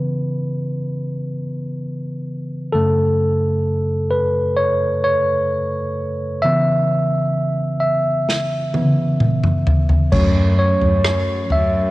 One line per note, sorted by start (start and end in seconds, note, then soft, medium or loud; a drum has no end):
0.00 2.74 C#3 soft
0.00 2.76 E3 soft
0.00 2.77 B3 soft
0.00 1.31 B4 medium
2.72 6.39 F#2 soft
2.72 6.39 C#3 soft
2.72 6.40 A3 medium
2.72 4.08 A4 medium
4.11 4.59 B4 medium
4.57 5.03 C#5 medium
5.04 6.47 C#5 medium
6.42 8.72 C#3 soft
6.42 8.73 E3 soft
6.42 8.74 B3 soft
6.42 7.77 E5 medium
7.80 9.16 E5 medium
8.29 snare soft
8.73 9.16 C#3 soft
8.73 9.16 E3 soft
8.73 9.17 B3 soft
8.73 high tom medium
9.20 mid tom medium
9.43 mid tom medium
9.67 floor tom medium
9.89 floor tom medium
10.12 10.78 F#2 medium
10.12 11.91 F#3 soft
10.12 11.91 A3 soft
10.12 11.91 C#4 soft
10.12 10.58 C#5 medium
10.12 kick medium
10.12 floor tom medium
10.12 crash medium
10.59 11.54 C#5 medium
10.82 11.47 F#2 medium
10.82 floor tom soft
11.05 cross-stick medium
11.50 11.91 F#2 medium
11.50 11.91 E5 medium
11.50 floor tom medium